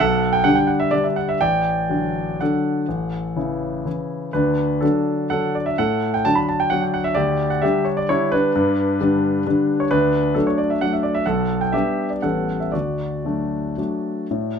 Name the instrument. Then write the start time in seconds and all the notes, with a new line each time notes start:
grand piano
0.00 B1 A4 F#5
0.33 G5
0.44 D3 G3 D4 F#5
0.55 G5
0.67 F#5
0.80 E5
0.91 D3 G3 D4 D5
1.04 E5
1.16 F#5
1.29 E5
1.41 A1 D5 G5
1.89 D3 F#3 D4
2.40 D3 F#3 D4 A4 F#5
2.88 A1
3.36 C#3 E3 E4
3.85 C#3 E3 E4
4.33 D2 D4 B4
4.81 D3 F#3 D4 A4
5.30 D3 F#3 D4 A4 F#5
5.55 D5
5.66 E5
5.78 A2 A4 F#5
6.14 G5
6.25 D3 F#3 D4 A5
6.35 B5
6.49 A5
6.60 G5
6.70 D3 F#3 D4 F#5
6.82 G5
6.94 F#5
7.04 E5
7.15 D2 G4 D5
7.50 F#5
7.62 D3 G3 D4 G4 E5
7.85 C#5
7.97 D5
8.09 D3 G3 D4 E4 C#5
8.32 D4 B4
8.56 G2
9.00 D3 G3 D4
9.46 D3 G3 D4
9.80 C#5
9.91 D2 D4 B4
10.34 F#3 A3 D4 A4
10.47 C#5
10.58 D5
10.70 E5
10.81 F#3 A3 D4 F#5
10.93 E5
11.03 D5
11.15 E5
11.26 B1 A4 F#5
11.61 G5
11.72 G3 B3 D4 G4 E5
12.10 D5
12.22 A1 G3 B3 C#4 A4 F#5
12.60 E5
12.72 D2 F#4 D5
13.25 F#3 A3 D4
13.78 F#3 A3 D4
14.31 A2